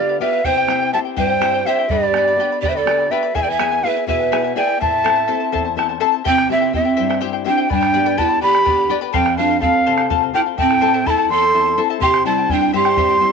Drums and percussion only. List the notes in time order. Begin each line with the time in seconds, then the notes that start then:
0.44 bombo low
0.68 bombo rim
1.17 bombo low
1.29 bombo rim
1.42 bombo rim
1.78 bombo rim
1.90 bombo low
2.14 bombo rim
2.64 bombo low
2.75 bombo rim
2.87 bombo rim
3.24 bombo rim
3.35 bombo low
3.59 bombo rim
4.09 bombo low
4.21 bombo rim
4.33 bombo rim
4.70 bombo rim
4.82 bombo rim, bombo low
5.06 bombo rim
5.55 bombo rim, bombo low
5.79 bombo rim
6.03 bombo rim
6.14 bombo rim
6.26 bombo rim, bombo low
6.38 bombo rim
6.74 bombo low
7.11 bombo rim
7.71 bombo rim, bombo low
7.83 bombo rim
8.19 bombo low
8.55 bombo rim
8.67 bombo low
9.14 bombo rim, bombo low
9.26 bombo rim
9.62 bombo low
9.98 bombo rim
10.10 bombo low
10.58 bombo low
10.71 bombo rim
11.07 bombo low
11.18 bombo rim
11.30 bombo rim
12.02 bombo rim, bombo low
12.14 bombo rim
12.49 bombo low
12.85 bombo rim
12.97 bombo low